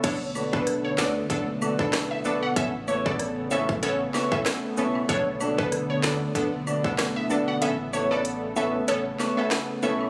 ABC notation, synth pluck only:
X:1
M:4/4
L:1/16
Q:"Swing 16ths" 1/4=95
K:Bm
V:1 name="Synth pluck"
c2 z B z c d z6 e z f | e z c d2 z e2 c z2 e z4 | c2 z B z c d z6 e z f | e z c d2 z e2 c z2 e z2 e z |]